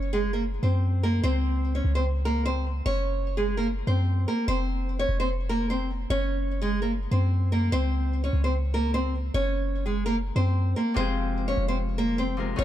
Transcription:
0.00 0.59 F#1 loud
0.00 0.10 C#4 medium
0.13 0.32 G#3 medium
0.13 0.32 G#4 medium
0.33 0.43 A#3 medium
0.33 0.42 A#4 medium
0.63 1.21 F#2 loud
0.63 1.01 C4 medium
0.63 1.01 C5 medium
1.03 1.23 A#3 medium
1.03 1.23 A#4 medium
1.24 1.82 C#2 loud
1.24 1.72 C4 loud
1.24 1.72 C5 loud
1.75 1.94 C#4 medium
1.75 1.94 C#5 medium
1.84 2.82 C#2 loud
1.95 2.05 C4 medium
1.95 2.04 C5 medium
2.25 2.45 A#3 medium
2.25 2.44 A#4 medium
2.46 2.65 C4 medium
2.46 2.65 C5 medium
2.86 3.83 F#1 loud
2.86 3.34 C#4 medium
2.86 3.34 C#5 loud
3.37 3.57 G#3 medium
3.37 3.56 G#4 medium
3.57 3.67 A#3 medium
3.57 3.66 A#4 medium
3.87 4.26 F#2 loud
3.87 4.26 C4 medium
3.87 4.25 C5 medium
4.28 4.47 A#3 medium
4.28 4.47 A#4 medium
4.48 5.06 F1 loud
4.48 4.97 C4 medium
4.48 4.96 C5 loud
4.99 5.19 C#4 medium
4.99 5.18 C#5 medium
5.09 6.06 F1 loud
5.20 5.29 C4 medium
5.20 5.29 C5 medium
5.49 5.69 A#3 medium
5.49 5.69 A#4 medium
5.70 5.89 C4 medium
5.70 5.89 C5 medium
6.10 7.07 F#1 loud
6.10 6.59 C#4 medium
6.10 6.58 C#5 loud
6.62 6.81 G#3 medium
6.62 6.81 G#4 medium
6.82 6.91 A#3 medium
6.82 6.91 A#4 medium
7.11 7.70 F#2 loud
7.11 7.50 C4 medium
7.11 7.50 C5 medium
7.52 7.72 A#3 medium
7.52 7.71 A#4 medium
7.72 8.31 C#2 loud
7.72 8.21 C4 loud
7.72 8.20 C5 loud
8.24 8.43 C#4 medium
8.24 8.43 C#5 medium
8.33 9.30 C#2 loud
8.44 8.53 C4 medium
8.44 8.53 C5 medium
8.74 8.93 A#3 medium
8.74 8.93 A#4 medium
8.94 9.14 C4 medium
8.94 9.13 C5 medium
9.34 10.32 F#1 loud
9.34 9.83 C#4 medium
9.34 9.83 C#5 loud
9.86 10.05 G#3 medium
9.86 10.05 G#4 medium
10.06 10.15 A#3 medium
10.06 10.15 A#4 medium
10.36 10.75 F#2 loud
10.36 10.74 C4 medium
10.36 10.74 C5 medium
10.76 10.96 A#3 medium
10.76 10.95 A#4 medium
10.94 11.55 F1 loud
10.94 12.36 C3 medium
10.94 12.36 F3 medium
10.94 12.37 G#3 medium
10.94 11.45 C4 medium
10.94 11.45 C5 loud
10.99 12.39 F4 medium
10.99 12.64 G#4 medium
11.48 11.67 C#4 medium
11.48 11.67 C#5 medium
11.57 12.55 F1 loud
11.68 11.78 C4 medium
11.68 11.77 C5 medium
11.98 12.18 A#3 medium
11.98 12.17 A#4 medium
12.18 12.38 C4 medium
12.18 12.37 C5 medium
12.37 12.64 C3 medium
12.37 12.64 F3 soft
12.37 12.64 G#3 soft
12.37 12.59 F4 soft
12.37 12.59 A#4 medium
12.56 12.64 F#1 loud
12.56 12.64 C#3 medium
12.56 12.64 F#3 medium
12.56 12.64 A#3 medium
12.56 12.64 C#4 medium
12.56 12.64 C#5 loud
12.60 12.64 F#4 medium

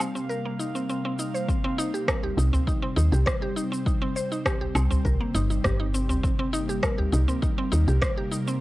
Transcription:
0.00 1.45 C3 medium
0.00 1.45 G3 medium
0.00 1.47 A#3 medium
0.00 0.14 C4 medium
0.00 1.50 F5 medium
0.00 low woodblock medium
0.00 shaker medium
0.15 0.28 C4 medium
0.15 shaker soft
0.29 0.44 A#4 medium
0.29 shaker soft
0.45 0.59 A#3 medium
0.59 0.73 D#4 medium
0.59 shaker medium
0.75 0.88 C4 medium
0.75 shaker soft
0.89 1.04 C4 medium
0.89 shaker soft
1.05 1.13 C4 medium
1.19 1.34 D#4 medium
1.19 shaker medium
1.34 1.47 C5 medium
1.34 shaker soft
1.48 8.61 C3 medium
1.48 8.61 G3 medium
1.48 1.62 C4 medium
1.48 6.23 C4 loud
1.48 kick loud
1.48 shaker soft
1.64 1.78 C4 loud
1.78 1.93 D#4 loud
1.78 shaker medium
1.94 2.07 G4 medium
1.94 shaker soft
2.08 2.22 A#4 loud
2.08 kick loud
2.08 cross-stick loud
2.08 low woodblock medium
2.08 shaker soft
2.23 2.36 G4 medium
2.23 udu medium
2.37 2.51 C2 loud
2.37 2.47 D#4 medium
2.37 shaker medium
2.53 2.66 C4 medium
2.53 udu medium
2.53 shaker soft
2.67 2.81 D#4 medium
2.67 kick medium
2.67 shaker soft
2.82 2.96 C4 loud
2.96 3.10 D#2 medium
2.96 3.11 D#4 loud
2.96 shaker medium
3.12 3.24 C2 loud
3.12 3.25 G4 medium
3.12 shaker soft
3.26 3.40 C5 loud
3.26 kick loud
3.26 cross-stick loud
3.26 shaker soft
3.42 3.55 G4 medium
3.56 3.65 D#4 medium
3.56 shaker medium
3.72 3.85 C4 medium
3.72 shaker soft
3.86 4.00 D#4 medium
3.86 kick loud
3.86 shaker soft
4.02 4.15 C4 loud
4.16 4.30 C5 medium
4.16 shaker medium
4.32 4.44 D#4 medium
4.32 shaker soft
4.46 4.60 G4 medium
4.46 kick loud
4.46 cross-stick loud
4.46 low woodblock medium
4.46 shaker soft
4.61 4.74 G4 medium
4.61 udu medium
4.75 4.88 C2 loud
4.75 4.89 C4 medium
4.75 low woodblock medium
4.75 shaker medium
4.91 5.03 C4 medium
4.91 udu medium
4.91 shaker soft
5.05 5.18 C2 medium
5.05 5.20 A#4 medium
5.05 kick loud
5.05 shaker soft
5.21 5.34 A#3 medium
5.35 5.60 G1 medium
5.35 5.49 D#4 loud
5.35 shaker medium
5.50 5.63 D#4 medium
5.50 shaker soft
5.64 6.80 G1 medium
5.64 5.79 G4 medium
5.64 kick loud
5.64 cross-stick loud
5.64 shaker soft
5.80 5.88 D#4 medium
5.94 6.08 C4 medium
5.94 shaker medium
6.09 6.22 C4 medium
6.09 udu medium
6.09 shaker soft
6.23 8.61 A#3 medium
6.23 6.38 C4 medium
6.23 kick loud
6.23 shaker soft
6.39 6.53 C4 loud
6.53 6.68 D#4 loud
6.53 shaker medium
6.69 6.82 G4 medium
6.69 shaker soft
6.83 6.97 A#4 loud
6.83 kick loud
6.83 cross-stick medium
6.83 low woodblock medium
6.83 shaker soft
6.98 7.11 G4 medium
6.98 udu medium
7.12 7.26 C2 loud
7.12 7.21 D#4 medium
7.12 shaker medium
7.28 7.41 C4 medium
7.28 udu loud
7.28 shaker soft
7.42 7.56 D#4 medium
7.42 kick loud
7.42 shaker soft
7.58 7.72 C4 loud
7.72 7.86 D#2 medium
7.72 7.87 D#4 loud
7.72 shaker medium
7.88 8.00 C2 loud
7.88 8.01 G4 medium
7.88 shaker soft
8.02 8.16 C5 loud
8.02 kick loud
8.02 cross-stick loud
8.02 shaker soft
8.17 8.30 G4 medium
8.31 8.40 D#4 medium
8.31 shaker medium
8.48 8.60 C4 medium
8.48 shaker soft

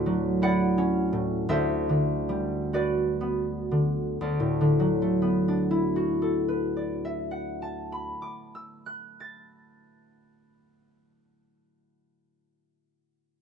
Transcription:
0.00 1.47 D2 medium
0.00 1.11 A2 soft
0.00 2.56 D4 soft
0.00 0.41 E4 soft
0.00 2.72 F#4 soft
0.00 3.24 A4 medium
0.00 0.42 D5 medium
0.00 1.20 E5 medium
0.06 3.96 F#3 soft
0.42 1.53 E4 soft
0.42 2.73 D5 medium
0.42 4.33 F#5 medium
0.78 1.52 C#4 soft
1.13 1.52 A2 soft
1.49 4.20 D2 soft
1.49 4.24 C5 soft
1.49 3.76 E5 medium
1.89 3.70 D3 soft
2.29 4.23 G3 soft
2.73 5.95 F#4 soft
2.73 6.47 B4 soft
2.73 4.20 D5 soft
3.21 5.21 B3 soft
3.71 4.24 D3 soft
4.21 8.11 D2 soft
4.21 6.75 D5 soft
4.40 8.30 A2 soft
4.61 8.51 D3 soft
4.80 8.49 F#3 soft
5.02 8.35 A3 soft
5.22 8.32 B3 soft
5.48 8.58 D4 soft
5.71 8.80 E4 soft
5.96 9.06 F#4 soft
6.22 9.32 A4 soft
6.48 9.58 B4 soft
6.76 9.86 D5 soft
7.05 10.15 E5 soft
7.31 10.41 F#5 soft
7.62 10.72 A5 soft
7.92 11.02 B5 soft
8.22 11.09 D6 soft
8.55 11.10 E6 soft
8.86 11.10 F#6 soft
9.20 11.10 A6 soft

